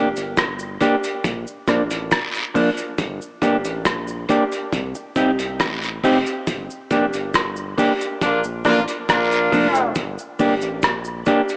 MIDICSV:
0, 0, Header, 1, 6, 480
1, 0, Start_track
1, 0, Tempo, 872093
1, 1641, Time_signature, 4, 2, 24, 8
1, 6368, End_track
2, 0, Start_track
2, 0, Title_t, "Clean electric guitar"
2, 0, Program_c, 0, 27
2, 444, Note_on_c, 0, 58, 87
2, 448, Note_on_c, 0, 62, 82
2, 451, Note_on_c, 0, 67, 95
2, 520, Note_off_c, 0, 58, 0
2, 522, Note_off_c, 0, 62, 0
2, 523, Note_off_c, 0, 67, 0
2, 922, Note_on_c, 0, 53, 88
2, 925, Note_on_c, 0, 58, 95
2, 928, Note_on_c, 0, 62, 98
2, 998, Note_off_c, 0, 53, 0
2, 1000, Note_off_c, 0, 58, 0
2, 1001, Note_off_c, 0, 62, 0
2, 1399, Note_on_c, 0, 53, 92
2, 1404, Note_on_c, 0, 58, 104
2, 1407, Note_on_c, 0, 62, 97
2, 1477, Note_off_c, 0, 53, 0
2, 1479, Note_off_c, 0, 58, 0
2, 1481, Note_off_c, 0, 62, 0
2, 1882, Note_on_c, 0, 58, 86
2, 1886, Note_on_c, 0, 62, 85
2, 1889, Note_on_c, 0, 67, 85
2, 1958, Note_off_c, 0, 58, 0
2, 1960, Note_off_c, 0, 62, 0
2, 1961, Note_off_c, 0, 67, 0
2, 2362, Note_on_c, 0, 58, 82
2, 2366, Note_on_c, 0, 62, 89
2, 2369, Note_on_c, 0, 67, 91
2, 2437, Note_off_c, 0, 58, 0
2, 2440, Note_off_c, 0, 62, 0
2, 2441, Note_off_c, 0, 67, 0
2, 2839, Note_on_c, 0, 60, 88
2, 2844, Note_on_c, 0, 63, 96
2, 2847, Note_on_c, 0, 67, 99
2, 2916, Note_off_c, 0, 60, 0
2, 2919, Note_off_c, 0, 63, 0
2, 2920, Note_off_c, 0, 67, 0
2, 3323, Note_on_c, 0, 60, 97
2, 3327, Note_on_c, 0, 63, 96
2, 3329, Note_on_c, 0, 67, 112
2, 3398, Note_off_c, 0, 60, 0
2, 3400, Note_off_c, 0, 63, 0
2, 3401, Note_off_c, 0, 67, 0
2, 3801, Note_on_c, 0, 58, 79
2, 3807, Note_on_c, 0, 62, 88
2, 3810, Note_on_c, 0, 67, 79
2, 3877, Note_off_c, 0, 58, 0
2, 3880, Note_off_c, 0, 62, 0
2, 3881, Note_off_c, 0, 67, 0
2, 4280, Note_on_c, 0, 58, 86
2, 4285, Note_on_c, 0, 62, 93
2, 4288, Note_on_c, 0, 67, 104
2, 4357, Note_off_c, 0, 58, 0
2, 4359, Note_off_c, 0, 62, 0
2, 4361, Note_off_c, 0, 67, 0
2, 4759, Note_on_c, 0, 53, 79
2, 4763, Note_on_c, 0, 58, 95
2, 4767, Note_on_c, 0, 62, 101
2, 4836, Note_off_c, 0, 53, 0
2, 4838, Note_off_c, 0, 58, 0
2, 4840, Note_off_c, 0, 62, 0
2, 5238, Note_on_c, 0, 53, 86
2, 5242, Note_on_c, 0, 58, 80
2, 5246, Note_on_c, 0, 62, 85
2, 5315, Note_off_c, 0, 53, 0
2, 5318, Note_off_c, 0, 58, 0
2, 5320, Note_off_c, 0, 62, 0
2, 5720, Note_on_c, 0, 58, 85
2, 5725, Note_on_c, 0, 62, 83
2, 5727, Note_on_c, 0, 67, 93
2, 5796, Note_off_c, 0, 58, 0
2, 5799, Note_off_c, 0, 62, 0
2, 5800, Note_off_c, 0, 67, 0
2, 6200, Note_on_c, 0, 58, 83
2, 6203, Note_on_c, 0, 62, 88
2, 6207, Note_on_c, 0, 67, 95
2, 6276, Note_off_c, 0, 58, 0
2, 6278, Note_off_c, 0, 62, 0
2, 6280, Note_off_c, 0, 67, 0
2, 6368, End_track
3, 0, Start_track
3, 0, Title_t, "Horn section"
3, 0, Program_c, 1, 61
3, 4526, Note_on_c, 1, 62, 90
3, 4527, Note_on_c, 1, 58, 89
3, 4528, Note_on_c, 1, 65, 95
3, 4630, Note_off_c, 1, 62, 0
3, 4631, Note_off_c, 1, 58, 0
3, 4631, Note_off_c, 1, 65, 0
3, 4765, Note_on_c, 1, 58, 97
3, 4765, Note_on_c, 1, 62, 96
3, 4767, Note_on_c, 1, 65, 106
3, 4843, Note_off_c, 1, 62, 0
3, 4844, Note_off_c, 1, 58, 0
3, 4845, Note_off_c, 1, 65, 0
3, 5007, Note_on_c, 1, 58, 91
3, 5008, Note_on_c, 1, 62, 93
3, 5008, Note_on_c, 1, 65, 104
3, 5462, Note_off_c, 1, 58, 0
3, 5462, Note_off_c, 1, 62, 0
3, 5462, Note_off_c, 1, 65, 0
3, 6368, End_track
4, 0, Start_track
4, 0, Title_t, "Analog synth bass"
4, 0, Program_c, 2, 38
4, 0, Note_on_c, 2, 29, 102
4, 83, Note_off_c, 2, 29, 0
4, 93, Note_on_c, 2, 31, 95
4, 199, Note_off_c, 2, 31, 0
4, 206, Note_on_c, 2, 31, 94
4, 429, Note_off_c, 2, 31, 0
4, 685, Note_on_c, 2, 34, 111
4, 801, Note_off_c, 2, 34, 0
4, 924, Note_on_c, 2, 34, 89
4, 1041, Note_off_c, 2, 34, 0
4, 1048, Note_on_c, 2, 33, 99
4, 1155, Note_off_c, 2, 33, 0
4, 1643, Note_on_c, 2, 31, 123
4, 1760, Note_off_c, 2, 31, 0
4, 1882, Note_on_c, 2, 31, 100
4, 1999, Note_off_c, 2, 31, 0
4, 2008, Note_on_c, 2, 33, 103
4, 2114, Note_off_c, 2, 33, 0
4, 2123, Note_on_c, 2, 34, 90
4, 2347, Note_off_c, 2, 34, 0
4, 2602, Note_on_c, 2, 36, 111
4, 2719, Note_off_c, 2, 36, 0
4, 2841, Note_on_c, 2, 36, 80
4, 2958, Note_off_c, 2, 36, 0
4, 2968, Note_on_c, 2, 36, 86
4, 3074, Note_off_c, 2, 36, 0
4, 3083, Note_on_c, 2, 33, 101
4, 3307, Note_off_c, 2, 33, 0
4, 3323, Note_on_c, 2, 29, 92
4, 3440, Note_off_c, 2, 29, 0
4, 3563, Note_on_c, 2, 31, 106
4, 3679, Note_off_c, 2, 31, 0
4, 3804, Note_on_c, 2, 29, 90
4, 3920, Note_off_c, 2, 29, 0
4, 3930, Note_on_c, 2, 31, 91
4, 4036, Note_off_c, 2, 31, 0
4, 4042, Note_on_c, 2, 31, 93
4, 4266, Note_off_c, 2, 31, 0
4, 4522, Note_on_c, 2, 34, 107
4, 4639, Note_off_c, 2, 34, 0
4, 4650, Note_on_c, 2, 34, 81
4, 4755, Note_off_c, 2, 34, 0
4, 4761, Note_on_c, 2, 33, 86
4, 4879, Note_off_c, 2, 33, 0
4, 5004, Note_on_c, 2, 34, 105
4, 5227, Note_off_c, 2, 34, 0
4, 5244, Note_on_c, 2, 29, 100
4, 5467, Note_off_c, 2, 29, 0
4, 5482, Note_on_c, 2, 31, 115
4, 5599, Note_off_c, 2, 31, 0
4, 5723, Note_on_c, 2, 31, 101
4, 5839, Note_off_c, 2, 31, 0
4, 5847, Note_on_c, 2, 33, 98
4, 5954, Note_off_c, 2, 33, 0
4, 5962, Note_on_c, 2, 34, 87
4, 6186, Note_off_c, 2, 34, 0
4, 6368, End_track
5, 0, Start_track
5, 0, Title_t, "Muted clean electric guitar strokes"
5, 2726, Note_on_c, 9, 29, 48
5, 2781, Note_off_c, 9, 29, 0
5, 6368, End_track
6, 0, Start_track
6, 0, Title_t, "Drums"
6, 90, Note_on_c, 9, 69, 72
6, 92, Note_on_c, 9, 42, 51
6, 145, Note_off_c, 9, 69, 0
6, 147, Note_off_c, 9, 42, 0
6, 204, Note_on_c, 9, 69, 81
6, 206, Note_on_c, 9, 36, 127
6, 206, Note_on_c, 9, 42, 102
6, 212, Note_on_c, 9, 37, 115
6, 260, Note_off_c, 9, 69, 0
6, 261, Note_off_c, 9, 36, 0
6, 261, Note_off_c, 9, 42, 0
6, 267, Note_off_c, 9, 37, 0
6, 326, Note_on_c, 9, 69, 55
6, 381, Note_off_c, 9, 69, 0
6, 443, Note_on_c, 9, 42, 82
6, 446, Note_on_c, 9, 36, 86
6, 446, Note_on_c, 9, 69, 48
6, 498, Note_off_c, 9, 42, 0
6, 501, Note_off_c, 9, 36, 0
6, 501, Note_off_c, 9, 69, 0
6, 571, Note_on_c, 9, 69, 71
6, 572, Note_on_c, 9, 42, 64
6, 626, Note_off_c, 9, 69, 0
6, 627, Note_off_c, 9, 42, 0
6, 684, Note_on_c, 9, 36, 124
6, 685, Note_on_c, 9, 42, 86
6, 685, Note_on_c, 9, 69, 66
6, 739, Note_off_c, 9, 36, 0
6, 740, Note_off_c, 9, 42, 0
6, 740, Note_off_c, 9, 69, 0
6, 809, Note_on_c, 9, 69, 68
6, 864, Note_off_c, 9, 69, 0
6, 921, Note_on_c, 9, 69, 52
6, 922, Note_on_c, 9, 36, 93
6, 922, Note_on_c, 9, 42, 77
6, 928, Note_on_c, 9, 37, 64
6, 976, Note_off_c, 9, 69, 0
6, 977, Note_off_c, 9, 36, 0
6, 977, Note_off_c, 9, 42, 0
6, 983, Note_off_c, 9, 37, 0
6, 1049, Note_on_c, 9, 42, 70
6, 1049, Note_on_c, 9, 69, 71
6, 1104, Note_off_c, 9, 42, 0
6, 1104, Note_off_c, 9, 69, 0
6, 1163, Note_on_c, 9, 69, 85
6, 1163, Note_on_c, 9, 74, 85
6, 1164, Note_on_c, 9, 36, 114
6, 1164, Note_on_c, 9, 42, 94
6, 1169, Note_on_c, 9, 37, 114
6, 1218, Note_off_c, 9, 69, 0
6, 1218, Note_off_c, 9, 74, 0
6, 1219, Note_off_c, 9, 36, 0
6, 1219, Note_off_c, 9, 42, 0
6, 1224, Note_off_c, 9, 37, 0
6, 1288, Note_on_c, 9, 42, 60
6, 1290, Note_on_c, 9, 69, 45
6, 1343, Note_off_c, 9, 42, 0
6, 1346, Note_off_c, 9, 69, 0
6, 1403, Note_on_c, 9, 36, 91
6, 1403, Note_on_c, 9, 46, 65
6, 1406, Note_on_c, 9, 69, 49
6, 1458, Note_off_c, 9, 36, 0
6, 1458, Note_off_c, 9, 46, 0
6, 1461, Note_off_c, 9, 69, 0
6, 1526, Note_on_c, 9, 42, 49
6, 1526, Note_on_c, 9, 69, 73
6, 1581, Note_off_c, 9, 42, 0
6, 1581, Note_off_c, 9, 69, 0
6, 1641, Note_on_c, 9, 42, 82
6, 1641, Note_on_c, 9, 69, 69
6, 1642, Note_on_c, 9, 36, 111
6, 1696, Note_off_c, 9, 42, 0
6, 1696, Note_off_c, 9, 69, 0
6, 1697, Note_off_c, 9, 36, 0
6, 1770, Note_on_c, 9, 69, 57
6, 1825, Note_off_c, 9, 69, 0
6, 1881, Note_on_c, 9, 42, 72
6, 1882, Note_on_c, 9, 36, 94
6, 1885, Note_on_c, 9, 69, 56
6, 1936, Note_off_c, 9, 42, 0
6, 1937, Note_off_c, 9, 36, 0
6, 1940, Note_off_c, 9, 69, 0
6, 2007, Note_on_c, 9, 42, 46
6, 2008, Note_on_c, 9, 69, 74
6, 2062, Note_off_c, 9, 42, 0
6, 2063, Note_off_c, 9, 69, 0
6, 2122, Note_on_c, 9, 36, 127
6, 2122, Note_on_c, 9, 42, 109
6, 2122, Note_on_c, 9, 69, 82
6, 2128, Note_on_c, 9, 37, 120
6, 2177, Note_off_c, 9, 36, 0
6, 2177, Note_off_c, 9, 42, 0
6, 2177, Note_off_c, 9, 69, 0
6, 2183, Note_off_c, 9, 37, 0
6, 2244, Note_on_c, 9, 69, 54
6, 2299, Note_off_c, 9, 69, 0
6, 2360, Note_on_c, 9, 42, 77
6, 2363, Note_on_c, 9, 36, 91
6, 2364, Note_on_c, 9, 69, 46
6, 2415, Note_off_c, 9, 42, 0
6, 2418, Note_off_c, 9, 36, 0
6, 2419, Note_off_c, 9, 69, 0
6, 2488, Note_on_c, 9, 69, 61
6, 2489, Note_on_c, 9, 42, 55
6, 2543, Note_off_c, 9, 69, 0
6, 2544, Note_off_c, 9, 42, 0
6, 2601, Note_on_c, 9, 36, 107
6, 2603, Note_on_c, 9, 42, 81
6, 2603, Note_on_c, 9, 69, 66
6, 2656, Note_off_c, 9, 36, 0
6, 2658, Note_off_c, 9, 42, 0
6, 2658, Note_off_c, 9, 69, 0
6, 2724, Note_on_c, 9, 69, 64
6, 2779, Note_off_c, 9, 69, 0
6, 2839, Note_on_c, 9, 69, 54
6, 2840, Note_on_c, 9, 36, 89
6, 2840, Note_on_c, 9, 42, 77
6, 2894, Note_off_c, 9, 69, 0
6, 2895, Note_off_c, 9, 36, 0
6, 2895, Note_off_c, 9, 42, 0
6, 2966, Note_on_c, 9, 42, 69
6, 2968, Note_on_c, 9, 69, 64
6, 3021, Note_off_c, 9, 42, 0
6, 3023, Note_off_c, 9, 69, 0
6, 3081, Note_on_c, 9, 42, 94
6, 3082, Note_on_c, 9, 36, 119
6, 3082, Note_on_c, 9, 69, 86
6, 3082, Note_on_c, 9, 74, 82
6, 3086, Note_on_c, 9, 37, 108
6, 3136, Note_off_c, 9, 42, 0
6, 3137, Note_off_c, 9, 36, 0
6, 3137, Note_off_c, 9, 69, 0
6, 3137, Note_off_c, 9, 74, 0
6, 3141, Note_off_c, 9, 37, 0
6, 3204, Note_on_c, 9, 42, 59
6, 3210, Note_on_c, 9, 69, 47
6, 3259, Note_off_c, 9, 42, 0
6, 3265, Note_off_c, 9, 69, 0
6, 3322, Note_on_c, 9, 36, 76
6, 3322, Note_on_c, 9, 46, 74
6, 3325, Note_on_c, 9, 69, 45
6, 3377, Note_off_c, 9, 36, 0
6, 3377, Note_off_c, 9, 46, 0
6, 3380, Note_off_c, 9, 69, 0
6, 3445, Note_on_c, 9, 42, 46
6, 3448, Note_on_c, 9, 69, 75
6, 3500, Note_off_c, 9, 42, 0
6, 3503, Note_off_c, 9, 69, 0
6, 3561, Note_on_c, 9, 42, 82
6, 3562, Note_on_c, 9, 36, 126
6, 3562, Note_on_c, 9, 69, 76
6, 3616, Note_off_c, 9, 42, 0
6, 3617, Note_off_c, 9, 36, 0
6, 3617, Note_off_c, 9, 69, 0
6, 3689, Note_on_c, 9, 69, 59
6, 3744, Note_off_c, 9, 69, 0
6, 3801, Note_on_c, 9, 42, 73
6, 3802, Note_on_c, 9, 36, 95
6, 3802, Note_on_c, 9, 69, 59
6, 3856, Note_off_c, 9, 42, 0
6, 3857, Note_off_c, 9, 36, 0
6, 3857, Note_off_c, 9, 69, 0
6, 3925, Note_on_c, 9, 69, 68
6, 3927, Note_on_c, 9, 42, 53
6, 3980, Note_off_c, 9, 69, 0
6, 3982, Note_off_c, 9, 42, 0
6, 4041, Note_on_c, 9, 36, 117
6, 4041, Note_on_c, 9, 69, 80
6, 4042, Note_on_c, 9, 42, 101
6, 4048, Note_on_c, 9, 37, 116
6, 4096, Note_off_c, 9, 36, 0
6, 4096, Note_off_c, 9, 69, 0
6, 4097, Note_off_c, 9, 42, 0
6, 4103, Note_off_c, 9, 37, 0
6, 4163, Note_on_c, 9, 69, 59
6, 4218, Note_off_c, 9, 69, 0
6, 4280, Note_on_c, 9, 46, 72
6, 4283, Note_on_c, 9, 36, 88
6, 4286, Note_on_c, 9, 69, 53
6, 4335, Note_off_c, 9, 46, 0
6, 4338, Note_off_c, 9, 36, 0
6, 4341, Note_off_c, 9, 69, 0
6, 4409, Note_on_c, 9, 42, 57
6, 4409, Note_on_c, 9, 69, 69
6, 4464, Note_off_c, 9, 42, 0
6, 4464, Note_off_c, 9, 69, 0
6, 4521, Note_on_c, 9, 36, 118
6, 4522, Note_on_c, 9, 69, 68
6, 4523, Note_on_c, 9, 42, 86
6, 4576, Note_off_c, 9, 36, 0
6, 4577, Note_off_c, 9, 69, 0
6, 4578, Note_off_c, 9, 42, 0
6, 4645, Note_on_c, 9, 69, 62
6, 4700, Note_off_c, 9, 69, 0
6, 4760, Note_on_c, 9, 36, 93
6, 4760, Note_on_c, 9, 42, 78
6, 4760, Note_on_c, 9, 69, 53
6, 4766, Note_on_c, 9, 37, 61
6, 4815, Note_off_c, 9, 36, 0
6, 4815, Note_off_c, 9, 42, 0
6, 4815, Note_off_c, 9, 69, 0
6, 4821, Note_off_c, 9, 37, 0
6, 4886, Note_on_c, 9, 42, 65
6, 4888, Note_on_c, 9, 69, 68
6, 4941, Note_off_c, 9, 42, 0
6, 4943, Note_off_c, 9, 69, 0
6, 5002, Note_on_c, 9, 36, 112
6, 5002, Note_on_c, 9, 42, 90
6, 5004, Note_on_c, 9, 69, 81
6, 5004, Note_on_c, 9, 74, 84
6, 5007, Note_on_c, 9, 37, 111
6, 5057, Note_off_c, 9, 42, 0
6, 5058, Note_off_c, 9, 36, 0
6, 5059, Note_off_c, 9, 69, 0
6, 5059, Note_off_c, 9, 74, 0
6, 5062, Note_off_c, 9, 37, 0
6, 5126, Note_on_c, 9, 42, 59
6, 5130, Note_on_c, 9, 69, 44
6, 5181, Note_off_c, 9, 42, 0
6, 5185, Note_off_c, 9, 69, 0
6, 5242, Note_on_c, 9, 36, 85
6, 5242, Note_on_c, 9, 46, 77
6, 5246, Note_on_c, 9, 69, 41
6, 5297, Note_off_c, 9, 36, 0
6, 5297, Note_off_c, 9, 46, 0
6, 5301, Note_off_c, 9, 69, 0
6, 5364, Note_on_c, 9, 42, 48
6, 5367, Note_on_c, 9, 69, 77
6, 5419, Note_off_c, 9, 42, 0
6, 5422, Note_off_c, 9, 69, 0
6, 5479, Note_on_c, 9, 69, 75
6, 5480, Note_on_c, 9, 42, 80
6, 5481, Note_on_c, 9, 36, 118
6, 5534, Note_off_c, 9, 69, 0
6, 5535, Note_off_c, 9, 42, 0
6, 5536, Note_off_c, 9, 36, 0
6, 5606, Note_on_c, 9, 69, 55
6, 5661, Note_off_c, 9, 69, 0
6, 5720, Note_on_c, 9, 46, 54
6, 5720, Note_on_c, 9, 69, 56
6, 5721, Note_on_c, 9, 36, 86
6, 5775, Note_off_c, 9, 46, 0
6, 5775, Note_off_c, 9, 69, 0
6, 5776, Note_off_c, 9, 36, 0
6, 5842, Note_on_c, 9, 69, 74
6, 5846, Note_on_c, 9, 42, 52
6, 5897, Note_off_c, 9, 69, 0
6, 5901, Note_off_c, 9, 42, 0
6, 5958, Note_on_c, 9, 69, 78
6, 5961, Note_on_c, 9, 36, 118
6, 5961, Note_on_c, 9, 42, 110
6, 5967, Note_on_c, 9, 37, 119
6, 6013, Note_off_c, 9, 69, 0
6, 6016, Note_off_c, 9, 36, 0
6, 6016, Note_off_c, 9, 42, 0
6, 6022, Note_off_c, 9, 37, 0
6, 6079, Note_on_c, 9, 69, 55
6, 6134, Note_off_c, 9, 69, 0
6, 6196, Note_on_c, 9, 69, 47
6, 6199, Note_on_c, 9, 42, 78
6, 6202, Note_on_c, 9, 36, 91
6, 6251, Note_off_c, 9, 69, 0
6, 6254, Note_off_c, 9, 42, 0
6, 6257, Note_off_c, 9, 36, 0
6, 6323, Note_on_c, 9, 69, 67
6, 6329, Note_on_c, 9, 42, 58
6, 6368, Note_off_c, 9, 42, 0
6, 6368, Note_off_c, 9, 69, 0
6, 6368, End_track
0, 0, End_of_file